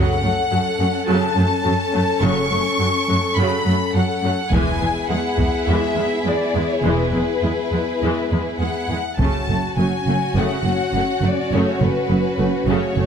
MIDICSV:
0, 0, Header, 1, 8, 480
1, 0, Start_track
1, 0, Key_signature, 3, "minor"
1, 0, Tempo, 572519
1, 1865, Time_signature, 4, 2, 24, 8
1, 4750, Tempo, 588235
1, 7630, Tempo, 578592
1, 10836, End_track
2, 0, Start_track
2, 0, Title_t, "Violin section"
2, 0, Program_c, 0, 48
2, 0, Note_on_c, 0, 78, 71
2, 866, Note_off_c, 0, 78, 0
2, 903, Note_on_c, 0, 81, 64
2, 1865, Note_off_c, 0, 81, 0
2, 1866, Note_on_c, 0, 85, 78
2, 2826, Note_on_c, 0, 83, 67
2, 2828, Note_off_c, 0, 85, 0
2, 3307, Note_off_c, 0, 83, 0
2, 3312, Note_on_c, 0, 78, 60
2, 3781, Note_off_c, 0, 78, 0
2, 3787, Note_on_c, 0, 80, 65
2, 4269, Note_off_c, 0, 80, 0
2, 4271, Note_on_c, 0, 78, 56
2, 4742, Note_off_c, 0, 78, 0
2, 4754, Note_on_c, 0, 76, 53
2, 5225, Note_off_c, 0, 76, 0
2, 5234, Note_on_c, 0, 74, 51
2, 5587, Note_off_c, 0, 74, 0
2, 5594, Note_on_c, 0, 73, 45
2, 5708, Note_on_c, 0, 71, 53
2, 5709, Note_off_c, 0, 73, 0
2, 7144, Note_on_c, 0, 78, 47
2, 7154, Note_off_c, 0, 71, 0
2, 7595, Note_off_c, 0, 78, 0
2, 7612, Note_on_c, 0, 81, 59
2, 8095, Note_off_c, 0, 81, 0
2, 8112, Note_on_c, 0, 80, 53
2, 8584, Note_off_c, 0, 80, 0
2, 8600, Note_on_c, 0, 78, 55
2, 9316, Note_off_c, 0, 78, 0
2, 9329, Note_on_c, 0, 74, 49
2, 9561, Note_off_c, 0, 74, 0
2, 9566, Note_on_c, 0, 73, 51
2, 9798, Note_off_c, 0, 73, 0
2, 9807, Note_on_c, 0, 71, 49
2, 10519, Note_off_c, 0, 71, 0
2, 10519, Note_on_c, 0, 73, 52
2, 10836, Note_off_c, 0, 73, 0
2, 10836, End_track
3, 0, Start_track
3, 0, Title_t, "Violin section"
3, 0, Program_c, 1, 48
3, 0, Note_on_c, 1, 61, 44
3, 0, Note_on_c, 1, 69, 38
3, 3758, Note_off_c, 1, 69, 0
3, 3792, Note_on_c, 1, 68, 40
3, 3793, Note_off_c, 1, 61, 0
3, 3797, Note_on_c, 1, 64, 44
3, 7434, Note_off_c, 1, 68, 0
3, 7437, Note_off_c, 1, 64, 0
3, 7632, Note_on_c, 1, 61, 33
3, 7634, Note_on_c, 1, 66, 33
3, 10836, Note_off_c, 1, 61, 0
3, 10836, Note_off_c, 1, 66, 0
3, 10836, End_track
4, 0, Start_track
4, 0, Title_t, "French horn section"
4, 0, Program_c, 2, 60
4, 0, Note_on_c, 2, 61, 37
4, 0, Note_on_c, 2, 69, 39
4, 3655, Note_off_c, 2, 61, 0
4, 3655, Note_off_c, 2, 69, 0
4, 3797, Note_on_c, 2, 68, 39
4, 3803, Note_on_c, 2, 59, 42
4, 7363, Note_off_c, 2, 68, 0
4, 7366, Note_off_c, 2, 59, 0
4, 7624, Note_on_c, 2, 66, 36
4, 7625, Note_on_c, 2, 61, 33
4, 10836, Note_off_c, 2, 61, 0
4, 10836, Note_off_c, 2, 66, 0
4, 10836, End_track
5, 0, Start_track
5, 0, Title_t, "Viola section"
5, 0, Program_c, 3, 48
5, 0, Note_on_c, 3, 49, 49
5, 0, Note_on_c, 3, 54, 49
5, 173, Note_off_c, 3, 54, 0
5, 174, Note_off_c, 3, 49, 0
5, 192, Note_on_c, 3, 57, 30
5, 193, Note_on_c, 3, 54, 31
5, 259, Note_off_c, 3, 57, 0
5, 260, Note_off_c, 3, 54, 0
5, 424, Note_on_c, 3, 54, 35
5, 491, Note_off_c, 3, 54, 0
5, 662, Note_on_c, 3, 57, 33
5, 664, Note_on_c, 3, 54, 36
5, 729, Note_off_c, 3, 57, 0
5, 731, Note_off_c, 3, 54, 0
5, 898, Note_on_c, 3, 49, 46
5, 902, Note_on_c, 3, 54, 52
5, 1123, Note_off_c, 3, 49, 0
5, 1123, Note_off_c, 3, 54, 0
5, 1133, Note_on_c, 3, 54, 42
5, 1139, Note_on_c, 3, 57, 38
5, 1200, Note_off_c, 3, 54, 0
5, 1206, Note_off_c, 3, 57, 0
5, 1375, Note_on_c, 3, 54, 38
5, 1376, Note_off_c, 3, 54, 0
5, 1376, Note_on_c, 3, 54, 41
5, 1443, Note_off_c, 3, 54, 0
5, 1614, Note_on_c, 3, 57, 40
5, 1620, Note_on_c, 3, 54, 38
5, 1681, Note_off_c, 3, 57, 0
5, 1688, Note_off_c, 3, 54, 0
5, 1853, Note_on_c, 3, 54, 52
5, 1856, Note_on_c, 3, 49, 54
5, 2082, Note_off_c, 3, 54, 0
5, 2083, Note_off_c, 3, 49, 0
5, 2101, Note_on_c, 3, 57, 30
5, 2102, Note_on_c, 3, 54, 31
5, 2168, Note_off_c, 3, 57, 0
5, 2169, Note_off_c, 3, 54, 0
5, 2345, Note_on_c, 3, 54, 35
5, 2347, Note_off_c, 3, 54, 0
5, 2347, Note_on_c, 3, 54, 38
5, 2414, Note_off_c, 3, 54, 0
5, 2585, Note_on_c, 3, 57, 34
5, 2586, Note_on_c, 3, 54, 39
5, 2652, Note_off_c, 3, 57, 0
5, 2653, Note_off_c, 3, 54, 0
5, 2829, Note_on_c, 3, 49, 50
5, 2831, Note_on_c, 3, 54, 49
5, 3052, Note_off_c, 3, 49, 0
5, 3053, Note_off_c, 3, 54, 0
5, 3060, Note_on_c, 3, 57, 36
5, 3061, Note_on_c, 3, 54, 43
5, 3127, Note_off_c, 3, 57, 0
5, 3128, Note_off_c, 3, 54, 0
5, 3316, Note_on_c, 3, 54, 46
5, 3317, Note_off_c, 3, 54, 0
5, 3317, Note_on_c, 3, 54, 42
5, 3384, Note_off_c, 3, 54, 0
5, 3553, Note_on_c, 3, 57, 37
5, 3557, Note_on_c, 3, 54, 42
5, 3620, Note_off_c, 3, 57, 0
5, 3624, Note_off_c, 3, 54, 0
5, 3794, Note_on_c, 3, 52, 55
5, 3797, Note_on_c, 3, 56, 50
5, 4016, Note_off_c, 3, 52, 0
5, 4017, Note_off_c, 3, 56, 0
5, 4028, Note_on_c, 3, 59, 31
5, 4031, Note_on_c, 3, 56, 28
5, 4095, Note_off_c, 3, 59, 0
5, 4098, Note_off_c, 3, 56, 0
5, 4273, Note_on_c, 3, 56, 34
5, 4275, Note_off_c, 3, 56, 0
5, 4275, Note_on_c, 3, 56, 36
5, 4342, Note_off_c, 3, 56, 0
5, 4510, Note_on_c, 3, 56, 35
5, 4514, Note_on_c, 3, 59, 28
5, 4577, Note_off_c, 3, 56, 0
5, 4581, Note_off_c, 3, 59, 0
5, 4756, Note_on_c, 3, 52, 42
5, 4757, Note_on_c, 3, 56, 38
5, 4973, Note_off_c, 3, 52, 0
5, 4973, Note_off_c, 3, 56, 0
5, 4997, Note_on_c, 3, 59, 32
5, 5000, Note_on_c, 3, 56, 32
5, 5062, Note_off_c, 3, 59, 0
5, 5066, Note_off_c, 3, 56, 0
5, 5234, Note_on_c, 3, 56, 33
5, 5299, Note_off_c, 3, 56, 0
5, 5464, Note_on_c, 3, 59, 35
5, 5470, Note_on_c, 3, 56, 36
5, 5529, Note_off_c, 3, 59, 0
5, 5535, Note_off_c, 3, 56, 0
5, 5703, Note_on_c, 3, 52, 35
5, 5705, Note_on_c, 3, 56, 37
5, 5928, Note_off_c, 3, 52, 0
5, 5929, Note_off_c, 3, 56, 0
5, 5954, Note_on_c, 3, 56, 25
5, 5955, Note_on_c, 3, 59, 22
5, 6019, Note_off_c, 3, 56, 0
5, 6020, Note_off_c, 3, 59, 0
5, 6186, Note_on_c, 3, 56, 31
5, 6190, Note_off_c, 3, 56, 0
5, 6190, Note_on_c, 3, 56, 33
5, 6255, Note_off_c, 3, 56, 0
5, 6431, Note_on_c, 3, 56, 31
5, 6431, Note_on_c, 3, 59, 28
5, 6496, Note_off_c, 3, 56, 0
5, 6497, Note_off_c, 3, 59, 0
5, 6673, Note_on_c, 3, 56, 40
5, 6674, Note_on_c, 3, 52, 39
5, 6896, Note_off_c, 3, 52, 0
5, 6896, Note_off_c, 3, 56, 0
5, 6910, Note_on_c, 3, 56, 30
5, 6911, Note_on_c, 3, 59, 28
5, 6976, Note_off_c, 3, 56, 0
5, 6976, Note_off_c, 3, 59, 0
5, 7153, Note_on_c, 3, 56, 33
5, 7160, Note_off_c, 3, 56, 0
5, 7160, Note_on_c, 3, 56, 33
5, 7225, Note_off_c, 3, 56, 0
5, 7386, Note_on_c, 3, 59, 26
5, 7389, Note_on_c, 3, 56, 29
5, 7452, Note_off_c, 3, 59, 0
5, 7454, Note_off_c, 3, 56, 0
5, 7622, Note_on_c, 3, 57, 39
5, 7626, Note_on_c, 3, 49, 43
5, 7851, Note_off_c, 3, 57, 0
5, 7853, Note_off_c, 3, 49, 0
5, 7875, Note_on_c, 3, 57, 26
5, 7876, Note_off_c, 3, 57, 0
5, 7876, Note_on_c, 3, 57, 25
5, 7942, Note_off_c, 3, 57, 0
5, 8115, Note_on_c, 3, 57, 29
5, 8116, Note_on_c, 3, 54, 31
5, 8182, Note_off_c, 3, 54, 0
5, 8182, Note_off_c, 3, 57, 0
5, 8363, Note_on_c, 3, 57, 31
5, 8365, Note_off_c, 3, 57, 0
5, 8365, Note_on_c, 3, 57, 29
5, 8431, Note_off_c, 3, 57, 0
5, 8599, Note_on_c, 3, 49, 39
5, 8601, Note_on_c, 3, 57, 39
5, 8820, Note_off_c, 3, 49, 0
5, 8821, Note_off_c, 3, 57, 0
5, 8847, Note_on_c, 3, 57, 32
5, 8913, Note_off_c, 3, 57, 0
5, 9085, Note_on_c, 3, 54, 29
5, 9085, Note_on_c, 3, 57, 35
5, 9152, Note_off_c, 3, 54, 0
5, 9152, Note_off_c, 3, 57, 0
5, 9323, Note_on_c, 3, 57, 33
5, 9325, Note_off_c, 3, 57, 0
5, 9325, Note_on_c, 3, 57, 33
5, 9391, Note_off_c, 3, 57, 0
5, 9558, Note_on_c, 3, 49, 39
5, 9560, Note_on_c, 3, 57, 45
5, 9778, Note_off_c, 3, 49, 0
5, 9779, Note_off_c, 3, 57, 0
5, 9797, Note_on_c, 3, 57, 29
5, 9799, Note_off_c, 3, 57, 0
5, 9799, Note_on_c, 3, 57, 26
5, 9865, Note_off_c, 3, 57, 0
5, 10022, Note_on_c, 3, 57, 31
5, 10026, Note_on_c, 3, 54, 34
5, 10088, Note_off_c, 3, 57, 0
5, 10092, Note_off_c, 3, 54, 0
5, 10266, Note_on_c, 3, 57, 29
5, 10268, Note_off_c, 3, 57, 0
5, 10268, Note_on_c, 3, 57, 31
5, 10335, Note_off_c, 3, 57, 0
5, 10517, Note_on_c, 3, 49, 51
5, 10518, Note_on_c, 3, 57, 41
5, 10737, Note_off_c, 3, 49, 0
5, 10738, Note_off_c, 3, 57, 0
5, 10765, Note_on_c, 3, 57, 39
5, 10767, Note_off_c, 3, 57, 0
5, 10767, Note_on_c, 3, 57, 33
5, 10834, Note_off_c, 3, 57, 0
5, 10836, End_track
6, 0, Start_track
6, 0, Title_t, "Cello section"
6, 0, Program_c, 4, 48
6, 191, Note_on_c, 4, 42, 32
6, 258, Note_off_c, 4, 42, 0
6, 432, Note_on_c, 4, 42, 36
6, 499, Note_off_c, 4, 42, 0
6, 669, Note_on_c, 4, 42, 37
6, 736, Note_off_c, 4, 42, 0
6, 905, Note_on_c, 4, 42, 47
6, 972, Note_off_c, 4, 42, 0
6, 1155, Note_on_c, 4, 42, 40
6, 1222, Note_off_c, 4, 42, 0
6, 1400, Note_on_c, 4, 42, 36
6, 1467, Note_off_c, 4, 42, 0
6, 1632, Note_on_c, 4, 42, 35
6, 1699, Note_off_c, 4, 42, 0
6, 1865, Note_on_c, 4, 42, 54
6, 1932, Note_off_c, 4, 42, 0
6, 2104, Note_on_c, 4, 42, 36
6, 2171, Note_off_c, 4, 42, 0
6, 2344, Note_on_c, 4, 42, 38
6, 2411, Note_off_c, 4, 42, 0
6, 2588, Note_on_c, 4, 42, 37
6, 2655, Note_off_c, 4, 42, 0
6, 2823, Note_on_c, 4, 42, 50
6, 2890, Note_off_c, 4, 42, 0
6, 3064, Note_on_c, 4, 42, 35
6, 3131, Note_off_c, 4, 42, 0
6, 3303, Note_on_c, 4, 42, 39
6, 3370, Note_off_c, 4, 42, 0
6, 3541, Note_on_c, 4, 42, 32
6, 3608, Note_off_c, 4, 42, 0
6, 3782, Note_on_c, 4, 40, 45
6, 3849, Note_off_c, 4, 40, 0
6, 4032, Note_on_c, 4, 40, 31
6, 4099, Note_off_c, 4, 40, 0
6, 4272, Note_on_c, 4, 40, 38
6, 4339, Note_off_c, 4, 40, 0
6, 4510, Note_on_c, 4, 40, 34
6, 4577, Note_off_c, 4, 40, 0
6, 4756, Note_on_c, 4, 40, 46
6, 4821, Note_off_c, 4, 40, 0
6, 4985, Note_on_c, 4, 40, 31
6, 5050, Note_off_c, 4, 40, 0
6, 5229, Note_on_c, 4, 40, 34
6, 5294, Note_off_c, 4, 40, 0
6, 5467, Note_on_c, 4, 40, 30
6, 5532, Note_off_c, 4, 40, 0
6, 5703, Note_on_c, 4, 40, 40
6, 5768, Note_off_c, 4, 40, 0
6, 5946, Note_on_c, 4, 40, 27
6, 6011, Note_off_c, 4, 40, 0
6, 6192, Note_on_c, 4, 40, 29
6, 6257, Note_off_c, 4, 40, 0
6, 6434, Note_on_c, 4, 40, 27
6, 6499, Note_off_c, 4, 40, 0
6, 6675, Note_on_c, 4, 40, 38
6, 6740, Note_off_c, 4, 40, 0
6, 6908, Note_on_c, 4, 40, 28
6, 6974, Note_off_c, 4, 40, 0
6, 7139, Note_on_c, 4, 40, 26
6, 7204, Note_off_c, 4, 40, 0
6, 7386, Note_on_c, 4, 40, 28
6, 7451, Note_off_c, 4, 40, 0
6, 7627, Note_on_c, 4, 42, 38
6, 7693, Note_off_c, 4, 42, 0
6, 7868, Note_on_c, 4, 42, 27
6, 7935, Note_off_c, 4, 42, 0
6, 8107, Note_on_c, 4, 42, 31
6, 8173, Note_off_c, 4, 42, 0
6, 8346, Note_on_c, 4, 42, 27
6, 8413, Note_off_c, 4, 42, 0
6, 8585, Note_on_c, 4, 42, 41
6, 8652, Note_off_c, 4, 42, 0
6, 8823, Note_on_c, 4, 42, 31
6, 8889, Note_off_c, 4, 42, 0
6, 9065, Note_on_c, 4, 42, 31
6, 9131, Note_off_c, 4, 42, 0
6, 9315, Note_on_c, 4, 42, 31
6, 9381, Note_off_c, 4, 42, 0
6, 9559, Note_on_c, 4, 42, 41
6, 9625, Note_off_c, 4, 42, 0
6, 9797, Note_on_c, 4, 42, 27
6, 9864, Note_off_c, 4, 42, 0
6, 10034, Note_on_c, 4, 42, 35
6, 10100, Note_off_c, 4, 42, 0
6, 10274, Note_on_c, 4, 42, 33
6, 10341, Note_off_c, 4, 42, 0
6, 10510, Note_on_c, 4, 42, 44
6, 10577, Note_off_c, 4, 42, 0
6, 10745, Note_on_c, 4, 42, 31
6, 10811, Note_off_c, 4, 42, 0
6, 10836, End_track
7, 0, Start_track
7, 0, Title_t, "Double bass section"
7, 0, Program_c, 5, 48
7, 0, Note_on_c, 5, 30, 47
7, 172, Note_off_c, 5, 30, 0
7, 1860, Note_on_c, 5, 30, 48
7, 2085, Note_off_c, 5, 30, 0
7, 3795, Note_on_c, 5, 28, 45
7, 4016, Note_off_c, 5, 28, 0
7, 5703, Note_on_c, 5, 28, 39
7, 5928, Note_off_c, 5, 28, 0
7, 7629, Note_on_c, 5, 30, 42
7, 7695, Note_off_c, 5, 30, 0
7, 7869, Note_on_c, 5, 30, 30
7, 7935, Note_off_c, 5, 30, 0
7, 8113, Note_on_c, 5, 30, 32
7, 8179, Note_off_c, 5, 30, 0
7, 8359, Note_on_c, 5, 30, 31
7, 8425, Note_off_c, 5, 30, 0
7, 8591, Note_on_c, 5, 30, 43
7, 8658, Note_off_c, 5, 30, 0
7, 8831, Note_on_c, 5, 30, 30
7, 8897, Note_off_c, 5, 30, 0
7, 9075, Note_on_c, 5, 30, 31
7, 9141, Note_off_c, 5, 30, 0
7, 9309, Note_on_c, 5, 30, 29
7, 9375, Note_off_c, 5, 30, 0
7, 9554, Note_on_c, 5, 30, 46
7, 9621, Note_off_c, 5, 30, 0
7, 9800, Note_on_c, 5, 30, 33
7, 9867, Note_off_c, 5, 30, 0
7, 10044, Note_on_c, 5, 30, 33
7, 10110, Note_off_c, 5, 30, 0
7, 10279, Note_on_c, 5, 30, 32
7, 10346, Note_off_c, 5, 30, 0
7, 10511, Note_on_c, 5, 30, 46
7, 10577, Note_off_c, 5, 30, 0
7, 10757, Note_on_c, 5, 30, 37
7, 10823, Note_off_c, 5, 30, 0
7, 10836, End_track
8, 0, Start_track
8, 0, Title_t, "Taiko and cinematic ensemble drums"
8, 3793, Note_on_c, 9, 41, 45
8, 3877, Note_off_c, 9, 41, 0
8, 4516, Note_on_c, 9, 41, 31
8, 4600, Note_off_c, 9, 41, 0
8, 7630, Note_on_c, 9, 41, 42
8, 7712, Note_off_c, 9, 41, 0
8, 10836, End_track
0, 0, End_of_file